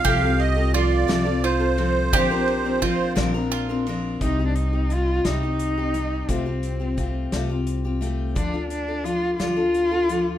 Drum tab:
RD |xxxxxx|xxxxxx|------|------|
HH |------|------|xxxxxx|xxxxxx|
SD |---o--|---o--|---o--|---o--|
BD |o-----|o-o---|o-----|o-o---|

RD |------|
HH |xxxxxx|
SD |---o--|
BD |o-----|